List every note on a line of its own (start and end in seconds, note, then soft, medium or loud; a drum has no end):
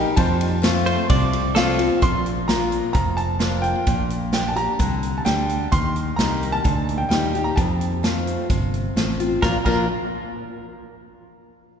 0.00 0.13 A#2 loud
0.00 0.18 D#4 medium
0.00 0.16 G4 medium
0.00 0.15 A#4 medium
0.00 0.19 G5 medium
0.16 1.05 F2 loud
0.16 0.96 F2 loud
0.16 1.52 C5 medium
0.16 1.52 A5 medium
0.16 kick loud
0.16 ride medium
0.41 ride medium
0.62 1.07 F3 medium
0.62 1.07 A3 medium
0.62 1.07 C4 medium
0.62 1.08 F4 loud
0.62 snare loud
0.62 ride medium
0.86 1.09 C5 medium
0.86 ride medium
1.09 1.89 C2 medium
1.09 1.98 C3 medium
1.09 1.55 D5 medium
1.09 kick loud
1.09 ride medium
1.33 ride medium
1.55 1.78 F3 medium
1.55 1.78 A3 medium
1.55 1.79 C4 medium
1.55 1.77 F4 loud
1.55 1.89 A4 medium
1.55 2.00 F5 medium
1.55 snare loud
1.55 ride medium
1.78 2.02 C4 soft
1.78 2.01 F4 medium
1.78 ride medium
2.02 2.81 A#1 medium
2.02 2.90 A#2 medium
2.02 2.46 C6 loud
2.02 kick loud
2.02 closed hi-hat medium
2.26 closed hi-hat medium
2.48 2.92 F3 medium
2.48 2.93 A#3 medium
2.48 2.93 D4 medium
2.48 2.93 F4 medium
2.48 2.92 A#5 medium
2.48 snare loud
2.48 closed hi-hat medium
2.72 closed hi-hat medium
2.93 3.74 F1 medium
2.93 3.82 F2 medium
2.93 3.18 A#5 medium
2.93 kick loud
2.93 closed hi-hat medium
3.17 3.60 A5 medium
3.17 closed hi-hat soft
3.39 3.84 F3 medium
3.39 3.85 A#3 medium
3.39 3.85 D4 medium
3.39 3.85 F4 medium
3.39 snare loud
3.39 closed hi-hat medium
3.62 4.06 G5 medium
3.62 closed hi-hat medium
3.87 4.66 A#1 medium
3.87 4.75 A#2 medium
3.87 kick loud
3.87 closed hi-hat medium
4.10 closed hi-hat medium
4.32 4.55 D3 medium
4.32 4.56 G3 medium
4.32 4.56 D4 medium
4.32 4.54 G4 medium
4.32 4.50 G5 medium
4.32 snare loud
4.32 closed hi-hat medium
4.48 4.56 A5 medium
4.56 4.79 D4 soft
4.56 4.78 G4 medium
4.56 5.21 A#5 medium
4.56 closed hi-hat medium
4.79 5.19 C2 medium
4.79 5.24 D3 medium
4.79 kick loud
4.79 closed hi-hat medium
5.03 closed hi-hat medium
5.18 5.25 A5 medium
5.25 5.66 D2 medium
5.25 5.69 D3 medium
5.25 5.70 G3 medium
5.25 5.70 D4 medium
5.25 5.71 G4 medium
5.25 5.69 G5 medium
5.25 snare loud
5.25 closed hi-hat medium
5.49 closed hi-hat medium
5.72 6.12 D#2 medium
5.72 6.60 D#3 medium
5.72 6.15 C6 loud
5.72 kick loud
5.72 closed hi-hat medium
5.96 closed hi-hat medium
6.16 6.58 C2 medium
6.16 6.62 G3 medium
6.16 6.63 A#3 medium
6.16 6.63 D#4 medium
6.16 6.64 G4 medium
6.16 6.53 A#5 medium
6.16 snare loud
6.16 closed hi-hat medium
6.43 closed hi-hat medium
6.52 7.01 A5 loud
6.64 7.04 D2 medium
6.64 7.53 A#2 medium
6.64 kick loud
6.64 closed hi-hat medium
6.89 closed hi-hat medium
6.98 7.07 G5 medium
7.09 7.50 D#2 medium
7.09 7.33 G3 medium
7.09 7.33 A#3 medium
7.09 7.34 D#4 medium
7.09 7.33 G4 medium
7.09 7.42 G5 medium
7.09 snare loud
7.09 closed hi-hat medium
7.34 7.58 D#4 soft
7.34 7.57 G4 medium
7.34 closed hi-hat medium
7.44 7.49 A#5 medium
7.56 8.36 F2 medium
7.56 8.46 F2 medium
7.56 8.92 A5 medium
7.56 kick loud
7.56 closed hi-hat medium
7.81 closed hi-hat medium
8.03 8.47 F3 medium
8.03 8.48 A3 medium
8.03 8.48 C4 medium
8.03 8.49 F4 medium
8.03 snare loud
8.03 closed hi-hat medium
8.27 closed hi-hat medium
8.50 8.89 G1 medium
8.50 9.38 C3 medium
8.50 kick loud
8.50 closed hi-hat medium
8.74 closed hi-hat medium
8.96 9.36 A1 medium
8.96 9.19 F3 medium
8.96 9.19 A3 medium
8.96 9.19 C4 medium
8.96 9.19 F4 medium
8.96 snare loud
8.96 closed hi-hat medium
9.20 9.43 C4 soft
9.20 9.42 F4 medium
9.20 closed hi-hat medium
9.42 9.56 A#1 medium
9.42 9.56 A#2 medium
9.42 9.56 F3 medium
9.42 9.57 A#3 medium
9.42 9.57 D4 medium
9.42 9.57 F4 medium
9.42 9.56 A#4 medium
9.42 9.55 A#5 medium
9.42 kick loud
9.42 snare medium
9.65 9.87 A#1 medium
9.65 9.84 A#2 medium
9.65 9.84 F3 medium
9.65 9.85 A#3 medium
9.65 9.85 D4 medium
9.65 9.85 F4 medium
9.65 9.88 A#4 medium
9.65 9.87 A#5 medium
9.65 kick medium
9.65 crash medium